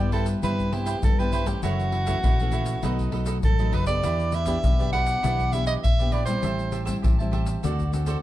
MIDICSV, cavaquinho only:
0, 0, Header, 1, 2, 480
1, 0, Start_track
1, 0, Tempo, 600601
1, 1307, Time_signature, 4, 2, 24, 8
1, 6571, End_track
2, 0, Start_track
2, 0, Title_t, "Cavaquinho"
2, 0, Program_c, 0, 24
2, 0, Note_on_c, 0, 71, 46
2, 0, Note_on_c, 0, 72, 38
2, 0, Note_on_c, 0, 79, 47
2, 89, Note_off_c, 0, 72, 0
2, 92, Note_off_c, 0, 79, 0
2, 93, Note_off_c, 0, 71, 0
2, 94, Note_on_c, 0, 64, 63
2, 99, Note_on_c, 0, 72, 66
2, 102, Note_on_c, 0, 71, 71
2, 112, Note_on_c, 0, 79, 72
2, 331, Note_off_c, 0, 64, 0
2, 333, Note_off_c, 0, 72, 0
2, 335, Note_off_c, 0, 71, 0
2, 339, Note_off_c, 0, 79, 0
2, 339, Note_on_c, 0, 64, 67
2, 347, Note_on_c, 0, 72, 73
2, 350, Note_on_c, 0, 71, 76
2, 357, Note_on_c, 0, 79, 75
2, 561, Note_off_c, 0, 64, 0
2, 567, Note_off_c, 0, 72, 0
2, 571, Note_off_c, 0, 71, 0
2, 571, Note_on_c, 0, 64, 46
2, 577, Note_off_c, 0, 79, 0
2, 577, Note_on_c, 0, 72, 50
2, 581, Note_on_c, 0, 71, 52
2, 587, Note_on_c, 0, 79, 53
2, 675, Note_off_c, 0, 64, 0
2, 683, Note_off_c, 0, 71, 0
2, 683, Note_off_c, 0, 72, 0
2, 684, Note_on_c, 0, 64, 70
2, 686, Note_off_c, 0, 79, 0
2, 692, Note_on_c, 0, 71, 68
2, 692, Note_on_c, 0, 72, 74
2, 695, Note_on_c, 0, 79, 71
2, 767, Note_off_c, 0, 64, 0
2, 771, Note_off_c, 0, 71, 0
2, 771, Note_off_c, 0, 72, 0
2, 773, Note_off_c, 0, 79, 0
2, 953, Note_on_c, 0, 79, 48
2, 959, Note_on_c, 0, 71, 44
2, 967, Note_on_c, 0, 72, 37
2, 1049, Note_off_c, 0, 72, 0
2, 1053, Note_on_c, 0, 64, 70
2, 1055, Note_off_c, 0, 71, 0
2, 1058, Note_on_c, 0, 72, 74
2, 1060, Note_off_c, 0, 79, 0
2, 1065, Note_on_c, 0, 71, 75
2, 1070, Note_on_c, 0, 79, 72
2, 1155, Note_off_c, 0, 79, 0
2, 1164, Note_off_c, 0, 71, 0
2, 1165, Note_on_c, 0, 79, 46
2, 1170, Note_off_c, 0, 64, 0
2, 1171, Note_off_c, 0, 72, 0
2, 1173, Note_on_c, 0, 71, 43
2, 1180, Note_on_c, 0, 72, 39
2, 1286, Note_off_c, 0, 79, 0
2, 1290, Note_off_c, 0, 71, 0
2, 1294, Note_off_c, 0, 72, 0
2, 1304, Note_on_c, 0, 64, 67
2, 1309, Note_on_c, 0, 69, 70
2, 1317, Note_on_c, 0, 73, 70
2, 1320, Note_on_c, 0, 78, 78
2, 1524, Note_off_c, 0, 64, 0
2, 1530, Note_off_c, 0, 69, 0
2, 1534, Note_on_c, 0, 64, 44
2, 1535, Note_off_c, 0, 73, 0
2, 1540, Note_off_c, 0, 78, 0
2, 1540, Note_on_c, 0, 69, 49
2, 1545, Note_on_c, 0, 73, 53
2, 1550, Note_on_c, 0, 78, 55
2, 1643, Note_off_c, 0, 64, 0
2, 1645, Note_off_c, 0, 69, 0
2, 1650, Note_off_c, 0, 73, 0
2, 1651, Note_off_c, 0, 78, 0
2, 1653, Note_on_c, 0, 64, 67
2, 1654, Note_on_c, 0, 69, 63
2, 1659, Note_on_c, 0, 73, 70
2, 1661, Note_on_c, 0, 78, 77
2, 1732, Note_off_c, 0, 64, 0
2, 1733, Note_off_c, 0, 69, 0
2, 1735, Note_off_c, 0, 73, 0
2, 1736, Note_off_c, 0, 78, 0
2, 1790, Note_on_c, 0, 64, 49
2, 1795, Note_on_c, 0, 69, 49
2, 1802, Note_on_c, 0, 73, 50
2, 1806, Note_on_c, 0, 78, 52
2, 1899, Note_off_c, 0, 64, 0
2, 1901, Note_off_c, 0, 69, 0
2, 1902, Note_off_c, 0, 78, 0
2, 1905, Note_off_c, 0, 73, 0
2, 1912, Note_on_c, 0, 78, 48
2, 1920, Note_on_c, 0, 73, 44
2, 1931, Note_on_c, 0, 69, 41
2, 2011, Note_off_c, 0, 69, 0
2, 2016, Note_on_c, 0, 64, 57
2, 2020, Note_off_c, 0, 73, 0
2, 2020, Note_off_c, 0, 78, 0
2, 2021, Note_on_c, 0, 69, 66
2, 2030, Note_on_c, 0, 73, 65
2, 2031, Note_on_c, 0, 78, 69
2, 2252, Note_off_c, 0, 64, 0
2, 2254, Note_off_c, 0, 69, 0
2, 2259, Note_off_c, 0, 73, 0
2, 2259, Note_on_c, 0, 63, 73
2, 2260, Note_off_c, 0, 78, 0
2, 2267, Note_on_c, 0, 69, 68
2, 2273, Note_on_c, 0, 71, 75
2, 2275, Note_on_c, 0, 75, 78
2, 2479, Note_off_c, 0, 63, 0
2, 2485, Note_off_c, 0, 69, 0
2, 2489, Note_on_c, 0, 63, 47
2, 2491, Note_off_c, 0, 71, 0
2, 2494, Note_on_c, 0, 69, 48
2, 2496, Note_off_c, 0, 75, 0
2, 2500, Note_on_c, 0, 71, 48
2, 2506, Note_on_c, 0, 75, 58
2, 2595, Note_off_c, 0, 63, 0
2, 2600, Note_off_c, 0, 69, 0
2, 2602, Note_off_c, 0, 71, 0
2, 2604, Note_off_c, 0, 75, 0
2, 2605, Note_on_c, 0, 63, 64
2, 2609, Note_on_c, 0, 69, 70
2, 2611, Note_on_c, 0, 71, 67
2, 2614, Note_on_c, 0, 75, 67
2, 2688, Note_off_c, 0, 63, 0
2, 2690, Note_off_c, 0, 69, 0
2, 2691, Note_off_c, 0, 71, 0
2, 2693, Note_off_c, 0, 75, 0
2, 2873, Note_on_c, 0, 75, 49
2, 2881, Note_on_c, 0, 71, 43
2, 2886, Note_on_c, 0, 69, 39
2, 2968, Note_off_c, 0, 69, 0
2, 2972, Note_on_c, 0, 63, 63
2, 2975, Note_off_c, 0, 71, 0
2, 2978, Note_off_c, 0, 75, 0
2, 2978, Note_on_c, 0, 69, 68
2, 2984, Note_on_c, 0, 71, 77
2, 2988, Note_on_c, 0, 75, 75
2, 3080, Note_off_c, 0, 75, 0
2, 3089, Note_off_c, 0, 71, 0
2, 3090, Note_off_c, 0, 63, 0
2, 3090, Note_on_c, 0, 75, 42
2, 3093, Note_off_c, 0, 69, 0
2, 3098, Note_on_c, 0, 71, 41
2, 3103, Note_on_c, 0, 69, 34
2, 3209, Note_off_c, 0, 75, 0
2, 3213, Note_off_c, 0, 71, 0
2, 3216, Note_off_c, 0, 69, 0
2, 3230, Note_on_c, 0, 64, 68
2, 3238, Note_on_c, 0, 67, 66
2, 3241, Note_on_c, 0, 71, 74
2, 3247, Note_on_c, 0, 74, 79
2, 3455, Note_off_c, 0, 64, 0
2, 3458, Note_off_c, 0, 67, 0
2, 3465, Note_off_c, 0, 71, 0
2, 3465, Note_on_c, 0, 64, 48
2, 3468, Note_off_c, 0, 74, 0
2, 3468, Note_on_c, 0, 67, 46
2, 3475, Note_on_c, 0, 71, 50
2, 3479, Note_on_c, 0, 74, 52
2, 3561, Note_off_c, 0, 64, 0
2, 3565, Note_off_c, 0, 67, 0
2, 3565, Note_off_c, 0, 71, 0
2, 3569, Note_off_c, 0, 74, 0
2, 3570, Note_on_c, 0, 64, 65
2, 3574, Note_on_c, 0, 67, 68
2, 3575, Note_on_c, 0, 71, 73
2, 3578, Note_on_c, 0, 74, 78
2, 3651, Note_off_c, 0, 64, 0
2, 3653, Note_off_c, 0, 67, 0
2, 3653, Note_off_c, 0, 71, 0
2, 3655, Note_off_c, 0, 74, 0
2, 3702, Note_on_c, 0, 64, 47
2, 3707, Note_on_c, 0, 67, 44
2, 3712, Note_on_c, 0, 71, 53
2, 3716, Note_on_c, 0, 74, 52
2, 3815, Note_off_c, 0, 64, 0
2, 3818, Note_off_c, 0, 67, 0
2, 3820, Note_off_c, 0, 71, 0
2, 3822, Note_off_c, 0, 74, 0
2, 3831, Note_on_c, 0, 74, 48
2, 3840, Note_on_c, 0, 71, 41
2, 3846, Note_on_c, 0, 67, 39
2, 3929, Note_off_c, 0, 67, 0
2, 3935, Note_on_c, 0, 64, 64
2, 3938, Note_off_c, 0, 71, 0
2, 3939, Note_on_c, 0, 67, 63
2, 3940, Note_off_c, 0, 74, 0
2, 3948, Note_on_c, 0, 71, 72
2, 3948, Note_on_c, 0, 74, 73
2, 4168, Note_off_c, 0, 64, 0
2, 4173, Note_off_c, 0, 67, 0
2, 4177, Note_on_c, 0, 64, 77
2, 4178, Note_off_c, 0, 71, 0
2, 4178, Note_off_c, 0, 74, 0
2, 4183, Note_on_c, 0, 67, 73
2, 4191, Note_on_c, 0, 71, 75
2, 4194, Note_on_c, 0, 74, 80
2, 4405, Note_off_c, 0, 64, 0
2, 4414, Note_off_c, 0, 67, 0
2, 4414, Note_on_c, 0, 64, 49
2, 4419, Note_off_c, 0, 71, 0
2, 4420, Note_off_c, 0, 74, 0
2, 4423, Note_on_c, 0, 67, 52
2, 4428, Note_on_c, 0, 71, 50
2, 4429, Note_on_c, 0, 74, 57
2, 4514, Note_off_c, 0, 64, 0
2, 4520, Note_off_c, 0, 67, 0
2, 4522, Note_off_c, 0, 71, 0
2, 4524, Note_off_c, 0, 74, 0
2, 4524, Note_on_c, 0, 64, 71
2, 4529, Note_on_c, 0, 67, 66
2, 4531, Note_on_c, 0, 71, 77
2, 4533, Note_on_c, 0, 74, 69
2, 4607, Note_off_c, 0, 64, 0
2, 4610, Note_off_c, 0, 67, 0
2, 4611, Note_off_c, 0, 71, 0
2, 4612, Note_off_c, 0, 74, 0
2, 4788, Note_on_c, 0, 74, 52
2, 4794, Note_on_c, 0, 71, 41
2, 4804, Note_on_c, 0, 67, 40
2, 4887, Note_off_c, 0, 67, 0
2, 4889, Note_on_c, 0, 64, 71
2, 4893, Note_off_c, 0, 71, 0
2, 4897, Note_on_c, 0, 67, 73
2, 4898, Note_off_c, 0, 74, 0
2, 4903, Note_on_c, 0, 71, 75
2, 4907, Note_on_c, 0, 74, 71
2, 4990, Note_off_c, 0, 74, 0
2, 4999, Note_on_c, 0, 74, 43
2, 5000, Note_off_c, 0, 71, 0
2, 5006, Note_off_c, 0, 67, 0
2, 5009, Note_off_c, 0, 64, 0
2, 5010, Note_on_c, 0, 71, 44
2, 5015, Note_on_c, 0, 67, 36
2, 5123, Note_off_c, 0, 67, 0
2, 5124, Note_off_c, 0, 74, 0
2, 5129, Note_off_c, 0, 71, 0
2, 5132, Note_on_c, 0, 67, 61
2, 5138, Note_on_c, 0, 72, 72
2, 5146, Note_on_c, 0, 76, 77
2, 5151, Note_on_c, 0, 81, 78
2, 5360, Note_off_c, 0, 67, 0
2, 5364, Note_off_c, 0, 72, 0
2, 5368, Note_off_c, 0, 76, 0
2, 5370, Note_on_c, 0, 67, 46
2, 5372, Note_off_c, 0, 81, 0
2, 5374, Note_on_c, 0, 72, 49
2, 5378, Note_on_c, 0, 76, 54
2, 5381, Note_on_c, 0, 81, 56
2, 5465, Note_off_c, 0, 67, 0
2, 5469, Note_off_c, 0, 72, 0
2, 5469, Note_off_c, 0, 76, 0
2, 5474, Note_on_c, 0, 67, 67
2, 5475, Note_off_c, 0, 81, 0
2, 5479, Note_on_c, 0, 72, 67
2, 5479, Note_on_c, 0, 76, 74
2, 5485, Note_on_c, 0, 81, 70
2, 5563, Note_off_c, 0, 67, 0
2, 5565, Note_off_c, 0, 72, 0
2, 5565, Note_off_c, 0, 76, 0
2, 5568, Note_off_c, 0, 81, 0
2, 5613, Note_on_c, 0, 67, 48
2, 5620, Note_on_c, 0, 72, 45
2, 5627, Note_on_c, 0, 81, 54
2, 5628, Note_on_c, 0, 76, 49
2, 5731, Note_off_c, 0, 67, 0
2, 5733, Note_off_c, 0, 81, 0
2, 5734, Note_off_c, 0, 72, 0
2, 5738, Note_off_c, 0, 76, 0
2, 5742, Note_on_c, 0, 81, 46
2, 5751, Note_on_c, 0, 76, 44
2, 5761, Note_on_c, 0, 72, 38
2, 5845, Note_on_c, 0, 67, 66
2, 5846, Note_off_c, 0, 72, 0
2, 5850, Note_off_c, 0, 76, 0
2, 5855, Note_off_c, 0, 81, 0
2, 5856, Note_on_c, 0, 72, 68
2, 5860, Note_on_c, 0, 76, 68
2, 5865, Note_on_c, 0, 81, 69
2, 6086, Note_off_c, 0, 67, 0
2, 6092, Note_off_c, 0, 72, 0
2, 6094, Note_off_c, 0, 76, 0
2, 6096, Note_off_c, 0, 81, 0
2, 6097, Note_on_c, 0, 66, 67
2, 6101, Note_on_c, 0, 69, 67
2, 6105, Note_on_c, 0, 72, 73
2, 6112, Note_on_c, 0, 74, 78
2, 6321, Note_off_c, 0, 66, 0
2, 6328, Note_off_c, 0, 69, 0
2, 6330, Note_off_c, 0, 72, 0
2, 6331, Note_on_c, 0, 66, 45
2, 6333, Note_off_c, 0, 74, 0
2, 6338, Note_on_c, 0, 69, 50
2, 6340, Note_on_c, 0, 72, 51
2, 6343, Note_on_c, 0, 74, 51
2, 6440, Note_off_c, 0, 66, 0
2, 6441, Note_off_c, 0, 69, 0
2, 6444, Note_off_c, 0, 72, 0
2, 6448, Note_off_c, 0, 74, 0
2, 6450, Note_on_c, 0, 66, 69
2, 6450, Note_on_c, 0, 69, 77
2, 6454, Note_on_c, 0, 72, 75
2, 6458, Note_on_c, 0, 74, 70
2, 6530, Note_off_c, 0, 66, 0
2, 6530, Note_off_c, 0, 69, 0
2, 6532, Note_off_c, 0, 72, 0
2, 6534, Note_off_c, 0, 74, 0
2, 6571, End_track
0, 0, End_of_file